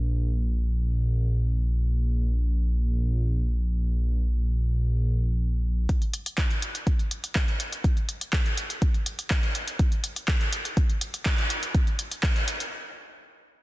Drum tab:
HH |----------------|----------------|----------------|xxxxxxxxxxxxxxxx|
CP |----------------|----------------|----------------|----x-------x---|
BD |----------------|----------------|----------------|o---o---o---o---|

HH |xxxxxxxxxxxxxxxx|xxxxxxxxxxxxxxxx|xxxxxxxx--------|
CP |----x-------x---|----x-------x---|----x-----------|
BD |o---o---o---o---|o---o---o---o---|o---o-----------|